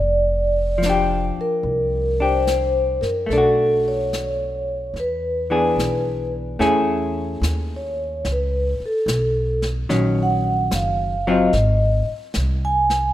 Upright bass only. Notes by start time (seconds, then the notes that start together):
0.00 F1
1.37 muted upright bass stroke
1.63 C2
3.02 F#2
3.29 B1
4.94 E2
5.76 B1
6.59 E2
7.41 D#2
8.25 C#2
8.80 muted upright bass stroke
9.06 B1
9.89 A#1
10.71 F#1
11.53 G#1
12.08 muted upright bass stroke
12.36 C2